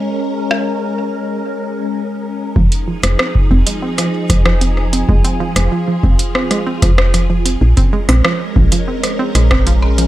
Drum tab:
HH |----------------|-x-x---x-x-x-x-x|-x-x---x-x-x-x-x|-x-x---x-x-x-x-x|
SD |---r------------|---rr----r-rr-r-|---r----rr-rrr--|---rr----r-rr-r-|
BD |----------------|o----o-----o----|o-----o----o----|-o----o-----o---|